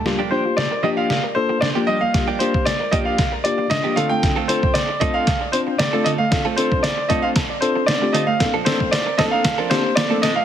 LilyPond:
<<
  \new Staff \with { instrumentName = "Grand piano" } { \time 4/4 \key g \minor \tempo 4 = 115 r8 c''8 d''8 ees''16 f''8 r16 c''8 d''8 ees''16 f''16~ | f''16 r16 c''8 d''8 ees''16 f''8 r16 d''8 ees''8 f''16 g''16~ | g''16 r16 c''8 d''8 ees''16 f''8 r16 c''8 d''8 ees''16 f''16~ | f''16 r16 c''8 d''8 ees''16 f''8 r16 c''8 d''8 ees''16 f''16~ |
f''16 r16 c''8 d''8 ees''16 f''8 r16 c''8 d''8 ees''16 f''16 | }
  \new Staff \with { instrumentName = "Synth pluck" } { \time 4/4 \key g \minor g16 r16 d'16 f'16 r16 bes'16 d''16 f''16 d''16 bes'16 r16 f'16 d'16 bes16 g16 bes16 | g16 r16 d'16 f'16 r16 bes'16 d''16 f''16 d''16 bes'16 r16 f'16 d'16 bes16 d16 a16 | d16 r16 c'16 d'16 r16 d''16 a''16 c'''16 a''16 d''16 r16 d'16 c'16 a16 d16 a16 | d16 r16 c'16 d'16 r16 d''16 a''16 c'''16 a''16 d''16 r16 d'16 c'16 a16 d16 a16 |
bes,16 r16 bes16 c'16 r16 bes'16 a''16 bes''16 a''16 bes'16 r16 c'16 bes16 a16 bes,16 a16 | }
  \new Staff \with { instrumentName = "Tine electric piano" } { \time 4/4 \key g \minor <bes d' f' g'>16 r16 <bes d' f' g'>8 r8 <bes d' f' g'>8 r8 <bes d' f' a'>8 r16 <bes d' f' g'>8 r16 | <bes d' f' g'>16 r16 <bes d' f' g'>8 r8 <bes d' f' g'>8 r8 <bes d' f' g'>8 r16 <bes d' f' g'>16 <c' d' f' a'>8~ | <c' d' f' a'>16 r16 <c' d' f' a'>8 r8 <c' d' f' a'>8 r8 <c' d' f' c''>8 r16 <c' d' f' a'>8 r16 | <c' d' f' a'>16 r16 <c' d' f' a'>8 r8 <c' d' f' c''>8 r8 <c' d' f' a'>8 r16 <c' d' f' g'>8 r16 |
<bes c' d' a'>16 r16 <bes c' d' a'>8 r8 <bes c' d' a'>8 r8 <bes c' d' g'>8 r16 <bes c' d' a'>8 r16 | }
  \new Staff \with { instrumentName = "Clean electric guitar" } { \time 4/4 \key g \minor r16 <f bes d' g'>16 <f bes d' g'>16 r8. <f bes d' g'>16 <f bes d' g'>16 r4 r16 <f bes d' g'>16 <f bes d' g'>16 r16 | r16 <f bes d' g'>16 <f bes d' g'>16 r8. <f bes d' g'>16 <f bes d' g'>16 r4 r16 <f bes d' g'>16 <a c' f' a'>16 r16 | r16 <a c' f' a'>16 <a c' f' a'>16 r8. <a c' f' a'>16 <a c' f' a'>16 r4 r16 <a c' f' a'>16 <a c' f' a'>16 r16 | r16 <a c' f' a'>16 <a c' f' a'>16 r8. <a c' f' a'>16 <a c' f' a'>16 r4. <a c' f' a'>16 r16 |
r16 <f c' d' a'>16 <f c' d' a'>16 r8. <f c' d' a'>16 <f c' d' a'>16 r16 <f c' d' a'>16 <f c' d' a'>16 r8 <f c' d' a'>16 <f c' d' a'>16 r16 | }
  \new DrumStaff \with { instrumentName = "Drums" } \drummode { \time 4/4 sn4 sn4 sn4 sn4 | <hh bd sn>8 hh16 bd16 <hh sn>8 <hh bd>8 <hh bd sn>8 hh8 <hh sn>8 hh8 | <hh bd sn>8 hh16 bd16 <hh sn>8 <hh bd>8 <hh bd sn>8 hh8 <hh sn>8 hh8 | <hh bd sn>8 hh16 bd16 <hh sn>8 <hh bd>8 <hh bd sn>8 hh8 <hh sn>8 hh8 |
<hh bd sn>8 <hh sn>16 bd16 <hh sn>8 <hh bd sn>8 <hh bd sn>8 <hh sn>8 <hh sn>8 <hh sn>8 | }
>>